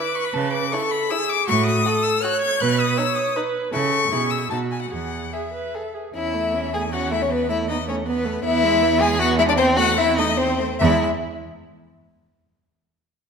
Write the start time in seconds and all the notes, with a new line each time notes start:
Already playing: B4 D6
0.15 C#6
0.24 B5
0.34 C#3 A5
0.53 D6
0.72 E4 A4 C#6
0.91 B5
1.10 E4 G#4 E6
1.29 D6
1.47 A2 F#4 C#6
1.66 D#6
1.85 F#4 A4
2.03 E6
2.23 F#4 C#5 F#6
2.42 G#6
2.60 B2 B4 F#6
2.79 D#6
2.97 D#4 C#5 E6
3.15 D#6
3.36 D#4 B4
3.73 C#3 E4 A4 C#6
4.11 B2 E4 G#4
4.30 E6
4.50 B2 D#4 F#4 A5
4.71 G#5
4.81 F#5
4.91 E2 G#4 F#5
5.33 G#4 E5
5.53 B4
5.74 G#4 A4
5.94 G#4
6.15 E2 C#4 E4 E5
6.34 A3
6.54 C#4
6.74 A3 G#4 G#5
6.92 C#4 F#4 F#5
7.11 A3 E4 E5
7.22 C#4 C#5
7.30 B3 B4
7.49 A3 E4 E5
7.68 B3 D#4 D#5
7.87 A3 C#4 C#5
8.06 B3 B4
8.25 A3
8.43 E2 B3 E4 E5
8.64 G#3
8.82 B3
9.00 G#3 G#4 G#5
9.19 B3 F#4 F#5
9.38 G#3 E4 E5
9.48 D4 D5
9.57 C4 C5
9.76 A3 F#4 F#5
9.98 C4 E4 E5
10.18 A3 D#4 D#5
10.37 C4 C5
10.60 A3
10.79 E2 G#3 E4 E5